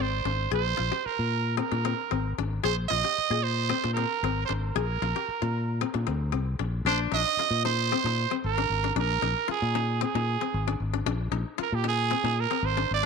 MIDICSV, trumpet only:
0, 0, Header, 1, 2, 480
1, 0, Start_track
1, 0, Tempo, 527241
1, 482, Time_signature, 4, 2, 24, 8
1, 11886, End_track
2, 0, Start_track
2, 0, Title_t, "Trumpet"
2, 0, Program_c, 0, 56
2, 13, Note_on_c, 0, 72, 92
2, 485, Note_off_c, 0, 72, 0
2, 490, Note_on_c, 0, 72, 108
2, 964, Note_on_c, 0, 70, 90
2, 977, Note_off_c, 0, 72, 0
2, 1439, Note_off_c, 0, 70, 0
2, 1445, Note_on_c, 0, 70, 83
2, 2129, Note_off_c, 0, 70, 0
2, 2402, Note_on_c, 0, 72, 108
2, 2511, Note_off_c, 0, 72, 0
2, 2624, Note_on_c, 0, 75, 123
2, 3122, Note_on_c, 0, 72, 110
2, 3136, Note_off_c, 0, 75, 0
2, 3575, Note_off_c, 0, 72, 0
2, 3581, Note_on_c, 0, 70, 98
2, 4041, Note_off_c, 0, 70, 0
2, 4055, Note_on_c, 0, 72, 88
2, 4119, Note_off_c, 0, 72, 0
2, 4200, Note_on_c, 0, 70, 89
2, 5727, Note_off_c, 0, 70, 0
2, 6255, Note_on_c, 0, 72, 107
2, 6361, Note_off_c, 0, 72, 0
2, 6497, Note_on_c, 0, 75, 127
2, 6939, Note_off_c, 0, 75, 0
2, 6965, Note_on_c, 0, 72, 111
2, 7649, Note_off_c, 0, 72, 0
2, 7695, Note_on_c, 0, 70, 102
2, 8137, Note_off_c, 0, 70, 0
2, 8185, Note_on_c, 0, 70, 106
2, 8622, Note_off_c, 0, 70, 0
2, 8658, Note_on_c, 0, 68, 89
2, 9097, Note_off_c, 0, 68, 0
2, 9134, Note_on_c, 0, 68, 85
2, 9810, Note_off_c, 0, 68, 0
2, 10578, Note_on_c, 0, 70, 91
2, 10694, Note_on_c, 0, 67, 88
2, 10708, Note_off_c, 0, 70, 0
2, 10804, Note_off_c, 0, 67, 0
2, 10817, Note_on_c, 0, 68, 106
2, 11292, Note_on_c, 0, 70, 104
2, 11306, Note_off_c, 0, 68, 0
2, 11521, Note_on_c, 0, 72, 106
2, 11534, Note_off_c, 0, 70, 0
2, 11758, Note_off_c, 0, 72, 0
2, 11780, Note_on_c, 0, 74, 110
2, 11883, Note_off_c, 0, 74, 0
2, 11886, End_track
0, 0, End_of_file